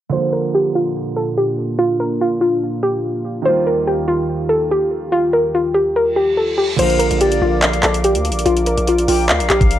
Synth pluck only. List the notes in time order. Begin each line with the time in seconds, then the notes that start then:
0.12 C5
0.32 A#4
0.54 G4
0.75 F4
1.16 A4
1.38 G4
1.79 F4
2.00 A#4
2.21 F4
2.41 F4
2.83 G4
3.45 C5
3.67 A#4
3.87 G4
4.08 F4
4.49 A4
4.71 G4
5.12 F4
5.33 A#4
5.55 F4
5.74 G4
5.96 A#4
6.16 G4
6.37 A4
6.58 G4
6.79 C5
6.99 A#4
7.21 G4
7.42 F4
7.83 A4
8.04 G4
8.46 F4
8.67 A#4
8.88 F4
9.08 F4
9.50 G4